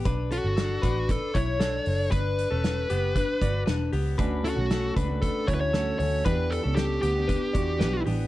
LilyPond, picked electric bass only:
\new Staff \with { instrumentName = "Picked electric bass" } { \clef bass \time 4/4 \key d \major \tempo 4 = 116 b,,8. g,,8. a,,8. r16 b,,4 fis,,8 | g,,8. e,,8. fis,,8. r16 g,,8 e,,8 cis,8 | d,8. b,,8. cis,8. r16 d,4 d,8 | e,8. cis,8. d,8. r16 e,8 b,,8 a,,8 | }